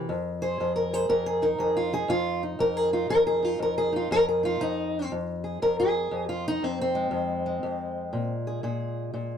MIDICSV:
0, 0, Header, 1, 2, 480
1, 0, Start_track
1, 0, Key_signature, -4, "minor"
1, 0, Tempo, 503778
1, 80, Time_signature, 4, 2, 24, 8
1, 8934, End_track
2, 0, Start_track
2, 0, Title_t, "Steel-string acoustic guitar"
2, 0, Program_c, 0, 25
2, 85, Note_on_c, 0, 41, 76
2, 399, Note_on_c, 0, 72, 90
2, 405, Note_on_c, 0, 68, 51
2, 569, Note_off_c, 0, 41, 0
2, 573, Note_on_c, 0, 41, 67
2, 574, Note_off_c, 0, 68, 0
2, 578, Note_on_c, 0, 68, 45
2, 718, Note_off_c, 0, 72, 0
2, 722, Note_on_c, 0, 70, 79
2, 885, Note_off_c, 0, 68, 0
2, 889, Note_on_c, 0, 68, 55
2, 894, Note_off_c, 0, 70, 0
2, 894, Note_on_c, 0, 72, 84
2, 1036, Note_off_c, 0, 41, 0
2, 1039, Note_on_c, 0, 41, 67
2, 1040, Note_off_c, 0, 72, 0
2, 1044, Note_on_c, 0, 70, 97
2, 1199, Note_off_c, 0, 70, 0
2, 1200, Note_off_c, 0, 68, 0
2, 1203, Note_on_c, 0, 68, 86
2, 1354, Note_on_c, 0, 63, 48
2, 1359, Note_off_c, 0, 68, 0
2, 1360, Note_on_c, 0, 70, 78
2, 1506, Note_off_c, 0, 41, 0
2, 1510, Note_on_c, 0, 41, 74
2, 1517, Note_off_c, 0, 70, 0
2, 1523, Note_on_c, 0, 68, 74
2, 1678, Note_off_c, 0, 68, 0
2, 1683, Note_on_c, 0, 65, 89
2, 1835, Note_off_c, 0, 63, 0
2, 1838, Note_off_c, 0, 65, 0
2, 1839, Note_on_c, 0, 63, 51
2, 1845, Note_on_c, 0, 68, 87
2, 1980, Note_off_c, 0, 41, 0
2, 1984, Note_on_c, 0, 41, 77
2, 1999, Note_off_c, 0, 68, 0
2, 1999, Note_on_c, 0, 65, 109
2, 2013, Note_off_c, 0, 63, 0
2, 2305, Note_off_c, 0, 65, 0
2, 2315, Note_on_c, 0, 63, 49
2, 2463, Note_off_c, 0, 41, 0
2, 2467, Note_on_c, 0, 41, 73
2, 2480, Note_on_c, 0, 70, 102
2, 2636, Note_off_c, 0, 70, 0
2, 2636, Note_on_c, 0, 68, 83
2, 2786, Note_off_c, 0, 63, 0
2, 2790, Note_off_c, 0, 68, 0
2, 2790, Note_on_c, 0, 63, 51
2, 2794, Note_on_c, 0, 65, 82
2, 2945, Note_off_c, 0, 41, 0
2, 2949, Note_on_c, 0, 41, 73
2, 2952, Note_off_c, 0, 65, 0
2, 2956, Note_on_c, 0, 70, 110
2, 3109, Note_off_c, 0, 70, 0
2, 3113, Note_on_c, 0, 68, 92
2, 3259, Note_off_c, 0, 63, 0
2, 3263, Note_on_c, 0, 63, 47
2, 3282, Note_off_c, 0, 68, 0
2, 3282, Note_on_c, 0, 65, 86
2, 3418, Note_off_c, 0, 41, 0
2, 3422, Note_on_c, 0, 41, 74
2, 3436, Note_off_c, 0, 65, 0
2, 3454, Note_on_c, 0, 70, 94
2, 3595, Note_off_c, 0, 70, 0
2, 3599, Note_on_c, 0, 68, 92
2, 3736, Note_off_c, 0, 63, 0
2, 3740, Note_on_c, 0, 63, 49
2, 3754, Note_off_c, 0, 68, 0
2, 3774, Note_on_c, 0, 65, 78
2, 3911, Note_off_c, 0, 41, 0
2, 3915, Note_on_c, 0, 41, 87
2, 3922, Note_off_c, 0, 65, 0
2, 3926, Note_on_c, 0, 70, 112
2, 3943, Note_off_c, 0, 63, 0
2, 4078, Note_off_c, 0, 70, 0
2, 4083, Note_on_c, 0, 68, 80
2, 4223, Note_on_c, 0, 63, 55
2, 4236, Note_off_c, 0, 68, 0
2, 4241, Note_on_c, 0, 65, 99
2, 4382, Note_off_c, 0, 41, 0
2, 4386, Note_on_c, 0, 41, 70
2, 4388, Note_off_c, 0, 63, 0
2, 4392, Note_on_c, 0, 63, 112
2, 4395, Note_off_c, 0, 65, 0
2, 4870, Note_off_c, 0, 63, 0
2, 4872, Note_off_c, 0, 41, 0
2, 4876, Note_on_c, 0, 41, 73
2, 5183, Note_on_c, 0, 68, 49
2, 5342, Note_off_c, 0, 41, 0
2, 5354, Note_on_c, 0, 41, 70
2, 5355, Note_off_c, 0, 68, 0
2, 5358, Note_on_c, 0, 70, 98
2, 5514, Note_off_c, 0, 70, 0
2, 5522, Note_on_c, 0, 68, 94
2, 5813, Note_off_c, 0, 41, 0
2, 5824, Note_on_c, 0, 41, 75
2, 5988, Note_off_c, 0, 68, 0
2, 5992, Note_on_c, 0, 65, 85
2, 6151, Note_off_c, 0, 65, 0
2, 6172, Note_on_c, 0, 63, 109
2, 6301, Note_off_c, 0, 41, 0
2, 6312, Note_on_c, 0, 41, 64
2, 6324, Note_off_c, 0, 63, 0
2, 6324, Note_on_c, 0, 60, 97
2, 6478, Note_off_c, 0, 60, 0
2, 6493, Note_on_c, 0, 60, 86
2, 6621, Note_on_c, 0, 56, 57
2, 6762, Note_off_c, 0, 41, 0
2, 6773, Note_on_c, 0, 41, 73
2, 7104, Note_off_c, 0, 56, 0
2, 7108, Note_on_c, 0, 56, 51
2, 7258, Note_off_c, 0, 41, 0
2, 7269, Note_on_c, 0, 41, 74
2, 7744, Note_on_c, 0, 46, 75
2, 7753, Note_off_c, 0, 41, 0
2, 7927, Note_off_c, 0, 60, 0
2, 8071, Note_on_c, 0, 68, 53
2, 8220, Note_off_c, 0, 46, 0
2, 8224, Note_on_c, 0, 46, 68
2, 8227, Note_off_c, 0, 68, 0
2, 8231, Note_on_c, 0, 68, 51
2, 8700, Note_off_c, 0, 46, 0
2, 8704, Note_on_c, 0, 46, 72
2, 8934, Note_off_c, 0, 46, 0
2, 8934, Note_off_c, 0, 56, 0
2, 8934, Note_off_c, 0, 68, 0
2, 8934, End_track
0, 0, End_of_file